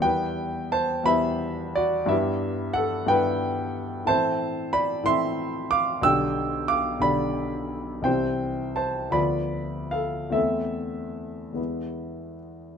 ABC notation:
X:1
M:12/8
L:1/8
Q:3/8=58
K:Em
V:1 name="Grand piano"
[Bg]2 [ca] [eb]2 [Fd] [Ge]2 [Af] [Bg]3 | [K:Am] [ca]2 [db] [ec']2 [fd'] [ge']2 [fd'] [db]3 | [cg]2 [ca] [db]2 [Af] [Ae]4- [Ae] z |]
V:2 name="Grand piano"
[E,,G,B,E]3 [E,,G,B,E]3 [G,,G,B,E]3 [G,,G,B,E]3 | [K:Am] [A,,E,CE]3 [A,,E,CE]3 [B,,,D,DG]3 [B,,,D,DG]3 | [C,,E,CG]3 [D,,F,B,F]3 [E,,A,CE]3 [E,,^G,B,E]3 |]